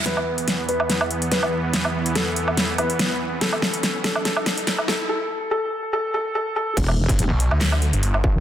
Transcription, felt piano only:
X:1
M:4/4
L:1/8
Q:"Swing 16ths" 1/4=143
K:Em
V:1 name="Felt piano"
B3 B3 B2- | B2 A3 B3 | A3 A A3 A | A2 A2 A A A A |
z8 |]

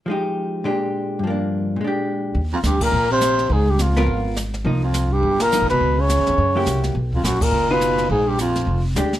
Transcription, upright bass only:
X:1
M:4/4
L:1/8
Q:"Swing" 1/4=209
K:Eb
V:1 name="Upright bass" clef=bass
z8 | z8 | E,,2 D,,2 B,,,4 | _D,,4 A,,,4 |
C,,4 G,,,2- (3G,,, B,,, C,, | _D,,2- (3D,, E,, _F,, _G,,2 C,,2 | =B,,,2 ^A,,,2 ^F,,,4 | B,,,4 F,,,2 D,,2 |]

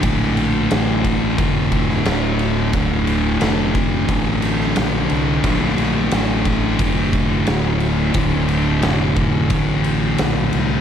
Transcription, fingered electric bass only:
X:1
M:4/4
L:1/8
Q:1/4=89
K:Dm
V:1 name="Fingered electric bass" clef=bass
B,,,2 A,,,2 F,,,2 D,,,2 | D,,,2 F,,,2 A,,,2 B,,, C,, | B,,,2 A,,,2 F,,,2 D,,,2 | D,,,2 F,,,2 A,,,2 B,,, C,, |]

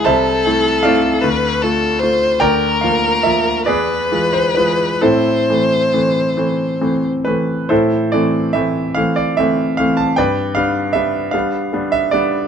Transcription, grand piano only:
X:1
M:6/8
L:1/16
Q:3/8=48
K:Am
V:1 name="Grand piano"
[cea]4 [Adf]8 | [_Bdg]2 f2 e2 [^G=Bd]3 c B2 | [CEA]8- [CEA]2 B2 | [EAc]2 d2 e2 f d e2 f a |
[Bdg]2 f2 e2 f3 e d2 |]
V:2 name="Grand piano"
C,,2 [A,CE]2 [A,CE]2 D,,2 [A,F]2 [A,F]2 | D,,2 [F,_B,F]2 [F,B,F]2 E,,2 [E,^G,F]2 [E,G,F]2 | A,,2 [E,A,C]2 [E,A,C]2 [E,A,C]2 [E,A,C]2 [E,A,C]2 | A,,2 [E,A,C]2 [E,A,C]2 [E,A,C]2 [E,A,C]2 [E,A,C]2 |
G,,2 [G,B,D]2 [G,B,D]2 [G,B,D]2 [G,B,D]2 [G,B,D]2 |]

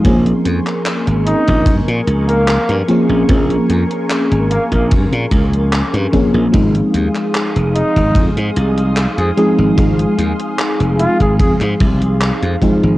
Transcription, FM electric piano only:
X:1
M:4/4
L:1/8
Q:1/4=74
K:Bbm
V:1 name="FM electric piano"
[F,B,CDA]6- [F,B,CDA] [F,B,CDA] | [F,B,CDA]6- [F,B,CDA] [F,B,CDA] | [F,A,CEA]6- [F,A,CEA] [F,A,CEA] | [F,A,CEA]6- [F,A,CEA] [F,A,CEA] |]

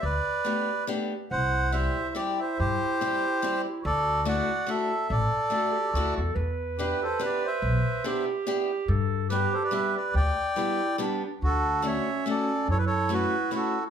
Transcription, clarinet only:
X:1
M:3/4
L:1/8
Q:"Swing" 1/4=143
K:G
V:1 name="Clarinet"
z6 | E6- | E6 | F6- |
F z A G F A | B6- | B2 G4 | A2 G4- |
G z E2 D D | [K:D] D2 C4 | E6 |]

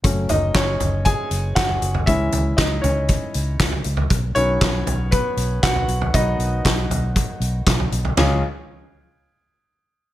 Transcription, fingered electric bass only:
X:1
M:4/4
L:1/16
Q:1/4=118
K:C#m
V:1 name="Fingered electric bass" clef=bass
F,,,2 F,,,2 F,,,2 F,,,3 z F,,,2 F,,,2 F,,,2 | C,,2 C,,2 C,,2 C,,3 z C,,2 C,,2 C,,2 | B,,,2 B,,,2 B,,,2 B,,,3 z B,,,2 B,,,2 B,,,2 | B,,,2 B,,,2 B,,,2 B,,,3 z B,,,2 B,,,2 B,,,2 |
C,,2 z12 z2 |]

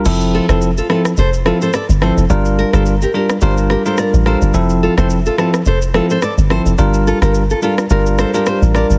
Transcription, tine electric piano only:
X:1
M:4/4
L:1/16
Q:"Swing 16ths" 1/4=107
K:F
V:1 name="Tine electric piano"
[F,CEA]3 [F,CEA] z2 [F,CEA]2 z2 [F,CEA]2 z2 [F,CEA]2 | [G,DFB]3 [G,DFB] z2 [G,DFB]2 [G,DFB]3 [G,DFB]3 [G,DFB]2 | [F,CEA]3 [F,CEA] z2 [F,CEA]2 z2 [F,CEA]2 z2 [F,CEA]2 | [G,DFB]3 [G,DFB] z2 [G,DFB]2 [G,DFB]3 [G,DFB]3 [G,DFB]2 |]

